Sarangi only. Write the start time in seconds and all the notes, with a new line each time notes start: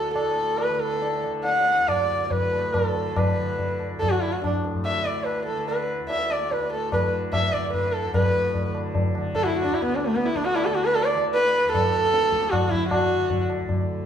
Already playing: A4
0.15 A4
0.58 B4
0.74 B4
0.80 A4
1.45 F#5
1.88 D5
2.25 D5
2.32 B4
2.74 A4
3.18 B4
4.00 A4
4.10 F#4
4.22 E4
4.32 F#4
4.43 D4
4.86 E5
5.06 D5
5.26 B4
5.46 A4
5.68 B4
6.10 E5
6.31 D5
6.53 B4
6.73 A4
6.93 B4
7.34 E5
7.53 D5
7.74 B4
7.93 A4
8.14 B4
9.36 A4
9.44 E4 F#4
9.55 F#4
9.64 D4
9.74 E4
9.84 B3
9.95 D4
10.06 A3
10.15 B3
10.25 E4
10.36 D4
10.45 F#4
10.55 E4
10.65 A4
10.74 F#4
10.85 B4
10.95 A4
11.04 D5
11.34 B4
11.72 A4
12.51 F#4
12.70 E4
12.89 F#4